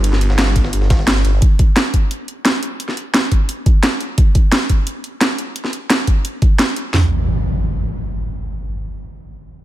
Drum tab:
RD |x-x-x-x-x-x-x-x-|----------------|----------------|----------------|
HH |x-x-x-x-x-x-x-x-|x-x-x-x-x-x-x-x-|x-x-x-x-x-x-x-x-|x-x-x-x-x-x-x-x-|
SD |-o-ooo-o-ooooo--|----o-------o---|-o--o-------o---|----o-------o---|
FT |----------------|----------------|----------------|----------------|
BD |------o---o-----|o-o---o---------|------o---o-----|o-o---o---------|

RD |----------------|----------------|----------------|
HH |x-x-x-x-x-x-x-x-|----------------|----------------|
SD |-o--o-------o---|o---------------|----------------|
FT |----------------|o---------------|----------------|
BD |------o---o-----|----------------|----------------|